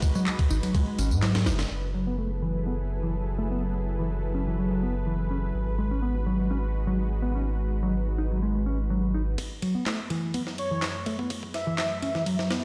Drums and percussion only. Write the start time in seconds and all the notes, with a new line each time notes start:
0.02 kick, ride, tambourine
0.15 tambourine
0.26 clap, ride, tambourine
0.39 kick, ride
0.50 tambourine
0.63 ride, tambourine
0.75 kick, ride, tambourine
0.98 ride, tambourine
1.11 tambourine
1.22 snare, clap, ride, tambourine
1.35 snare, ride
1.46 snare, ride, tambourine
1.59 snare, ride, tambourine
9.38 kick, ride
9.62 ride
9.86 snare, clap, ride
10.10 ride
10.34 ride
10.47 snare
10.58 ride
10.82 snare, clap, ride
11.06 kick, ride
11.19 kick
11.30 kick, ride
11.43 kick
11.54 snare, ride
11.78 snare, clap, ride
12.02 ride
12.15 snare
12.26 ride
12.39 snare
12.51 snare, ride